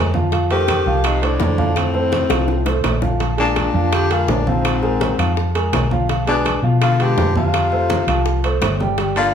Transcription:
Already playing: F2
0.14 F3 F4 F5, high bongo, high conga
0.32 F3 F4 F5, high bongo, high conga, high timbale
0.51 D#3 A3 G4 A4 C5, high conga, high timbale
0.68 high bongo, high conga, high timbale, low timbale, claves
0.86 C2 F3 F4 F5
1.04 C3 D#4, high bongo, high conga, high timbale, claves
1.22 A2 A3 D4 A4 C5, high conga, high timbale
1.40 F2, high bongo, low bongo, high conga, low timbale
1.58 F3 F4 F5, high conga
1.76 A2 C4, high bongo, high conga, high timbale, claves
1.94 A3 A4 C5, high bongo, high conga
2.12 high bongo, high conga, high timbale, low timbale
2.30 C2 F3 F4 F5, high bongo, high conga, high timbale, claves
2.48 low bongo, high conga
2.66 A3 A4 C5, low bongo, high conga, high timbale
2.84 A#1, low bongo, high conga, high timbale, low timbale, claves
3.02 F3 F4 F5, low bongo, high conga
3.20 F3 F4 F5, high bongo, high conga, high timbale
3.37 A#2 G#3 D4 G#4 A#4, high conga, high timbale
3.56 high bongo, high conga, high timbale, low timbale, claves
3.74 F2 F3 F4 F5
3.92 D3 G4, high bongo, high conga, high timbale, claves
4.10 D3 G#3 F4 G#4 A#4, high conga, high timbale
4.28 A#1 A#2 D4, high bongo, low bongo, high conga, low timbale
4.47 G#2 F3 C4 F4 F5, high conga
4.65 high bongo, high conga, high timbale, claves
4.83 G#3 G#4 A#4, high bongo, high conga
5.01 high bongo, high conga, high timbale, low timbale
5.18 F2 F3 F4 F5, high conga, high timbale, claves
5.37 high bongo, high conga
5.55 G#3 G#4 A#4, high bongo, high conga, high timbale
5.73 B1, high bongo, low bongo, high conga, high timbale, low timbale, claves
5.91 F3 F4 F5, high bongo, high conga
6.09 F3 F4 F5, high bongo, high conga, high timbale
6.27 B2 G#3 D4 G#4 B4, high conga, high timbale
6.45 high bongo, high conga, high timbale, low timbale, claves
6.63 B2 F3 F4 F5
6.82 D3 F4, high bongo, high conga, high timbale, claves
6.99 D3 G#3 F4 G4 B4, high conga, high timbale
7.17 F2, high bongo, low bongo, high conga, low timbale
7.35 C3 F3 F4 F5, high conga
7.54 high bongo, high conga, high timbale, claves
7.72 A3 A4 C5, high bongo, high conga
7.90 high bongo, high conga, high timbale, low timbale
8.07 C2 F3 F4 F5, high conga, high timbale, claves
8.26 high bongo, high conga
8.44 A3 A4 C5, high bongo, high conga, high timbale
8.61 G1, high bongo, low bongo, high conga, high timbale, low timbale, claves
8.80 G3 G4 G5, high bongo, high conga
8.98 G3 G4 G5, high bongo, high conga, high timbale
9.16 D3 A#3 F4 A#4 D5, high conga, high timbale

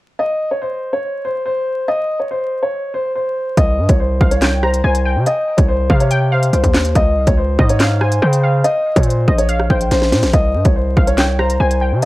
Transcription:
0.19 D#5
0.51 C#5
0.62 C5
0.93 C#5
1.25 C5
1.46 C5
1.88 D#5
2.20 C#5
2.31 C5
2.63 C#5
2.94 C5
3.15 C5
3.57 C2 D#5, kick, closed hi-hat
3.79 G2
3.89 C2 C#5, kick, closed hi-hat
4.00 C5
4.21 C2 F5, kick
4.31 C#5, closed hi-hat
4.42 G5, snare, clap, closed hi-hat
4.63 C5 A#5, cross-stick
4.74 closed hi-hat
4.84 C2 C5 G#5
4.95 closed hi-hat
5.05 G5
5.16 C3
5.26 D#5, closed hi-hat
5.57 C2 C#5, kick, closed hi-hat
5.68 C5
5.90 C3 F5, kick
6.00 C#5, closed hi-hat
6.11 G5, closed hi-hat
6.32 C5 F5
6.43 closed hi-hat
6.53 C2 C5, closed hi-hat
6.64 D#2, kick, closed hi-hat
6.74 snare, clap, closed hi-hat
6.85 closed hi-hat
6.95 C#2 D#5, kick, closed hi-hat
7.17 C2
7.27 C#2 C#5, kick, closed hi-hat
7.37 C5
7.59 G#2 D#5, kick
7.69 C#5, closed hi-hat
7.80 F5, snare, clap, closed hi-hat
8.01 C5 G#5, cross-stick
8.12 closed hi-hat
8.22 C#3 C5 G5
8.33 closed hi-hat
8.43 F5
8.64 D#5, closed hi-hat
8.96 A#2 C#5, kick, closed hi-hat
9.03 C5, closed hi-hat
9.10 closed hi-hat
9.28 A#1 D#5, kick
9.38 C#5, closed hi-hat
9.49 F5, closed hi-hat
9.60 cross-stick
9.70 A#1 C5 G5, kick
9.81 closed hi-hat
9.91 A#1 C5, snare, closed hi-hat
10.02 snare
10.12 A#2, snare, closed hi-hat
10.23 A#1, snare, closed hi-hat
10.33 C2 D#5, kick, closed hi-hat
10.55 G2
10.65 C2 C#5, kick, closed hi-hat
10.76 C5
10.97 C2 F5, kick
11.07 C#5, closed hi-hat
11.18 G5, snare, clap, closed hi-hat
11.39 C5 A#5, cross-stick
11.50 closed hi-hat
11.60 C2 C5 G#5
11.71 closed hi-hat
11.81 G5
11.92 C3

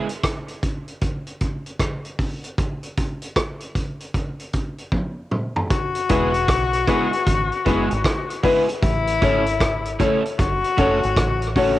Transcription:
0.09 closed hi-hat
0.24 kick, cross-stick, closed hi-hat
0.48 closed hi-hat
0.63 kick, closed hi-hat
0.88 closed hi-hat
1.01 kick, closed hi-hat
1.27 closed hi-hat
1.41 kick, closed hi-hat
1.66 closed hi-hat
1.80 kick, cross-stick, closed hi-hat
2.05 closed hi-hat
2.19 kick, open hi-hat
2.44 closed hi-hat
2.58 kick, closed hi-hat
2.83 closed hi-hat
2.97 kick, closed hi-hat
3.22 closed hi-hat
3.36 kick, cross-stick, closed hi-hat
3.60 closed hi-hat
3.75 kick, closed hi-hat
4.00 closed hi-hat
4.14 kick, closed hi-hat
4.40 closed hi-hat
4.53 kick, closed hi-hat
4.78 closed hi-hat
4.92 kick, high tom
5.31 mid tom
5.56 floor tom
5.70 F#4, kick, closed hi-hat
5.95 closed hi-hat
6.09 E1 G#3 B3 E4 G#4 B4, kick, closed hi-hat
6.34 closed hi-hat
6.48 B1, kick, cross-stick, closed hi-hat
6.73 closed hi-hat
6.87 G#3 B3 E4 G#4 B4, kick, cross-stick, closed hi-hat
7.13 G#4 B4, closed hi-hat
7.26 G#1, kick, closed hi-hat
7.52 closed hi-hat
7.65 F#1 G#3 B3 E4 G#4 B4, kick, closed hi-hat
7.90 G#1, muted clean electric guitar stroke, closed hi-hat
8.04 kick, cross-stick, closed hi-hat
8.30 closed hi-hat
8.43 G#3 B3 E4 G#4 B4, kick, open hi-hat
8.69 muted clean electric guitar stroke, closed hi-hat
8.82 A1 E4, kick, closed hi-hat
9.07 closed hi-hat
9.22 G#1 A3 C#4 E4 A4 C#5, kick, closed hi-hat
9.46 closed hi-hat
9.61 kick, cross-stick, closed hi-hat
9.86 closed hi-hat
9.99 A3 C#4 E4 A4 C#5, kick, closed hi-hat
10.25 A4 C#5, closed hi-hat
10.39 F#1 F#4, kick, closed hi-hat
10.64 closed hi-hat
10.77 F#1 A3 C#4 F#4 A4 C#5, kick, closed hi-hat
11.03 G#1, closed hi-hat
11.17 A1, kick, cross-stick, closed hi-hat
11.42 closed hi-hat
11.56 A3 C#4 F#4 A4 C#5, kick, open hi-hat

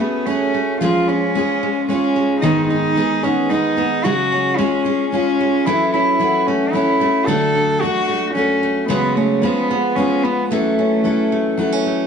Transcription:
Already playing: A3 C#4 F#4 G#4
0.00 A3 B3
0.26 A3 C#4 F#4
0.30 G#4
0.54 A3
0.81 F3 G#3 C#4 F4 G#4
1.08 C#4
1.35 G#3 C#4 F4 G#4
1.63 G#3
1.88 G#3 C#4 F4
1.93 G#4
2.16 G#3
2.40 G#2 D#3 G#3 B3 D#4
2.45 G#4
2.68 D#4
2.96 G#3 B3 D#4 G#4
3.23 G#3 B3 C#4 D#4 G#4
3.49 G#3 B3 D#4
3.54 G#4
3.77 G#3 B3 D#4 G#4
4.04 C#3 F#3 G#3 C#4 F#4 G#4
4.32 C#4
4.57 G#3 C#4 F4 G#4
4.85 G#3 C#4 F4 G#4
5.11 G#3 C#4 F4
5.15 G#4
5.41 G#3
5.66 E3 F#3 C#4 E4 A4
5.92 C#4 E4
6.19 F#3 C#4 E4 F#4 A4
6.46 A3 C#4
6.73 F#3 C#4 E4 A4
7.00 A3 C#4 E4 A4
7.26 D3 F#3 A3 D4 F#4 A4
7.55 D4
7.81 F#3 D4 F#4
7.86 A4
8.09 A3
8.34 F#3 C#4 F#4
8.38 A4
8.63 A3
8.88 C#3 F#3 G#3 B3 F#4 G#4
9.15 A3 C#4
9.42 F3 G#3 B3 F4 G#4
9.71 B3
9.96 G#3 B3 C#4 F4 G#4
10.23 B3
10.50 E3 F#3 A3 C#4 E4 A4
10.79 C#4
11.04 F#3 C#4 E4 A4
11.32 A3
11.58 F#3 B3 C#4 E4 A4
11.72 C#4
11.86 A3

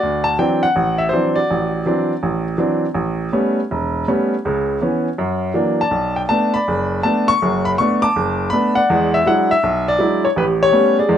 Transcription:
Already playing: F#4 D5
0.03 D2
0.24 A5
0.39 E3 F#3 C4 D4 G5
0.63 F#5
0.76 A1
0.98 E5
1.09 E3 F#3 C5
1.13 C4 D4
1.35 F#4 D5
1.50 A1
1.86 E3 F#3 C4 D4
2.23 A1
2.58 E3 F#3 C4 D4
2.94 A1
3.32 G3 A3 B3 C#4
3.71 E1
4.08 G3 A3 B3 C#4
4.45 C#2 C#3
4.81 E3 B3 C#4
5.18 F#2
5.54 E3 F#3 A#3 D4
5.81 D5 A5
5.91 B1
6.16 G5
6.29 A3 B3 D4 A5
6.54 D5 B5
6.68 F#1
7.03 A3 B3 D4 A5
7.28 C#6
7.42 F#1 F#2
7.65 B5
7.78 A3 B3 D4 C#6
8.02 A5 D6
8.16 F#1
8.50 A3 B3 D4 B5
8.75 D5 F#5
8.90 E2 G#3
9.14 E5
9.26 F#3 G#3 D4 E4 F#5
9.51 E5
9.63 B1
9.88 D5
9.99 F#3 G#3 D4 E4
10.25 C#5
10.36 A1 G4 B4
10.63 C#5
10.72 G3 A3 B3 C#4
10.99 G#4 D5
11.09 E2 G#3

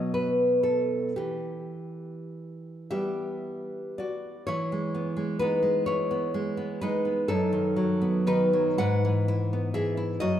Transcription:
Already playing: B2 F#3 B3 D#5
0.14 B4
0.63 A4
1.16 E3 G4
2.91 G3 B3 G4 E5
3.98 F#4 D5
4.47 E3 E4 C#5
4.72 G#3
4.95 B3
5.16 G#3
5.39 B3 D#4 B4
5.62 G#3
5.86 E4 C#5
6.11 B3
6.34 G#3
6.57 B3
6.81 G#3 D#4 B4
7.05 B3
7.28 F#2 D#4 A4
7.52 D#3
7.76 F#3
8.02 B3
8.27 D#3 D#4 B4
8.53 F#3
8.78 G#2 B4 F#5
9.05 E3
9.28 E4
9.53 B3
9.74 E3 G#4 E5
9.97 E4
10.20 F#2 F#4 D#5

